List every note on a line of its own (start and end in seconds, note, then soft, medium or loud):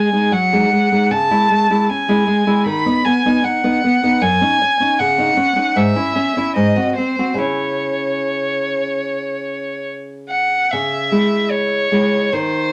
0.00 0.11 G#3 soft
0.00 0.34 G#5 soft
0.12 0.30 G#3 soft
0.12 0.31 D#4 soft
0.32 0.64 F#3 soft
0.32 1.13 F#5 medium
0.52 0.70 G#3 soft
0.52 0.70 D#4 soft
0.72 0.91 G#3 soft
0.92 1.09 G#3 soft
0.92 1.09 D#4 soft
1.11 1.30 C#3 soft
1.11 1.91 A5 medium
1.31 1.48 G#3 soft
1.31 1.48 E4 soft
1.50 1.69 G#3 soft
1.70 1.87 G#3 soft
1.70 1.87 E4 soft
1.90 2.20 C#4 soft
1.90 2.66 G#5 soft
2.08 2.26 G#3 soft
2.08 2.26 E4 soft
2.27 2.45 G#3 soft
2.46 2.64 G#3 soft
2.46 2.64 E4 soft
2.66 2.85 D#3 medium
2.66 3.06 B5 medium
2.86 3.03 B3 soft
2.86 3.03 D#4 soft
3.05 3.24 B3 soft
3.05 3.45 G#5 medium
3.25 3.42 B3 soft
3.25 3.42 D#4 soft
3.43 3.63 D#4 soft
3.43 4.23 F#5 medium
3.64 3.81 B3 soft
3.64 3.81 D#4 soft
3.84 4.02 B3 soft
4.03 4.20 B3 soft
4.03 4.20 D#4 soft
4.21 4.40 F#2 medium
4.21 5.00 G#5 medium
4.41 4.58 C#4 soft
4.41 4.59 D#4 soft
4.61 4.79 C#4 soft
4.80 4.97 C#4 soft
4.80 4.97 D#4 soft
4.99 5.30 C#3 soft
4.99 5.78 F#5 medium
5.18 5.35 C#4 soft
5.18 5.35 D#4 soft
5.37 5.55 C#4 soft
5.56 5.73 C#4 soft
5.56 5.74 D#4 soft
5.76 5.95 G#2 medium
5.76 6.55 E5 medium
5.95 6.13 C#4 soft
5.95 6.13 E4 soft
6.15 6.35 C#4 soft
6.36 6.54 C#4 soft
6.36 6.54 E4 soft
6.56 6.75 G#2 medium
6.56 6.96 D#5 medium
6.76 6.94 C4 soft
6.76 6.94 F#4 soft
6.96 7.17 C4 soft
6.96 7.40 C5 medium
7.19 7.35 C4 soft
7.19 7.37 F#4 soft
7.34 10.67 C#3 soft
7.34 10.67 C#4 soft
7.34 10.68 E4 soft
7.34 9.89 C#5 soft
10.30 10.73 F#5 soft
10.71 11.11 C#3 medium
10.71 11.52 E5 medium
11.12 11.88 G#3 soft
11.12 11.88 E4 soft
11.50 12.34 C#5 medium
11.92 12.28 G#3 soft
11.92 12.29 E4 soft
12.32 12.72 D#3 medium
12.32 12.72 C5 medium